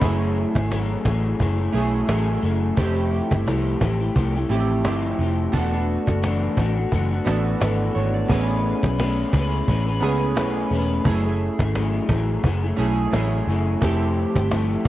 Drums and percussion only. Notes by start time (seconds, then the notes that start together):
0.02 cajon bass
0.36 cajon slap
0.55 cajon bass, cajon slap
0.72 cajon slap
1.05 cajon bass, cajon slap
1.40 cajon bass
1.74 cajon slap
2.09 cajon slap
2.43 cajon slap
2.77 cajon bass
3.12 cajon slap
3.31 cajon bass, cajon slap
3.48 cajon slap
3.81 cajon bass, cajon slap
4.16 cajon bass
4.51 cajon slap
4.85 cajon slap
5.19 cajon slap
5.53 cajon bass
5.88 cajon slap
6.07 cajon bass, cajon slap
6.23 cajon slap
6.57 cajon bass, cajon slap
6.92 cajon bass
7.27 cajon slap
7.61 cajon slap
7.96 cajon slap
8.29 cajon bass
8.64 cajon slap
8.83 cajon bass, cajon slap
9.00 cajon slap
9.33 cajon bass, cajon slap
9.68 cajon bass
10.02 cajon slap
10.37 cajon slap
10.71 cajon slap
11.05 cajon bass
11.40 cajon slap
11.59 cajon bass, cajon slap
11.75 cajon slap
12.09 cajon bass, cajon slap
12.44 cajon bass
12.78 cajon slap
13.13 cajon slap
13.48 cajon slap
13.82 cajon bass
14.16 cajon slap
14.35 cajon bass, cajon slap
14.51 cajon slap